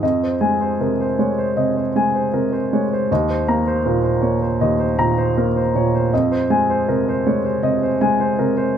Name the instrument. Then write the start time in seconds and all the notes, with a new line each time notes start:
grand piano
0.03 F2 D#5
0.23 C5
0.41 G#3 G#5
0.61 C5
0.80 C3 A#4
1.00 C5
1.19 G#3 C#5
1.38 C5
1.57 C3 D#5
1.77 C5
1.96 G#3 G#5
2.14 C5
2.33 C3 A#4
2.52 C5
2.73 G#3 C#5
2.93 C5
3.11 D#2 D#5
3.30 C5
3.48 A#3 A#5
3.67 C5
3.85 A#2 A#4
4.03 C5
4.22 A#3 C#5
4.42 C5
4.61 D#2 D#5
4.79 C5
4.99 A#2 A#5
5.18 C5
5.37 A#3 A#4
5.56 C5
5.75 A#2 C#5
5.95 C5
6.13 F2 D#5
6.31 C5
6.50 G#3 G#5
6.70 C5
6.88 C3 A#4
7.09 C5
7.27 G#3 C#5
7.44 C5
7.63 C3 D#5
7.83 C5
8.01 G#3 G#5
8.20 C5
8.39 C3 A#4
8.57 C5